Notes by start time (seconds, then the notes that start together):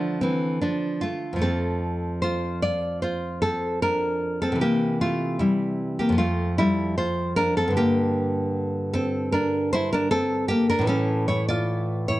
Already playing: D3 F3 A3 D4
0.21 E3 C4
0.62 F3 D4
1.01 A3 F4
1.33 F2 F3
1.39 A3 C4 A4
2.22 F4 C5
2.62 F4 D5
3.02 F4 C5
3.42 C4 A4
3.82 D4 A#4
4.42 C4 A4
4.52 C3 E3
4.61 A#3 G4
5.01 A3 F4
5.39 G3 E4
5.99 A#3 G4
6.09 F2 F3
6.18 A3 F4
6.58 G3 E4
6.98 F4 C5
7.36 D4 A#4
7.57 C4 A4
7.68 G2 D3
7.77 A#3 G4
8.94 C4 A4
9.32 D4 A#4
9.73 E4 C5
9.93 D4 A#4
10.11 C4 A4
10.48 A#3 G4
10.70 D4 A#4
10.79 A2 E3
10.87 C#4 A4
11.28 E4 C#5
11.48 F4 D5
12.08 E4 C#5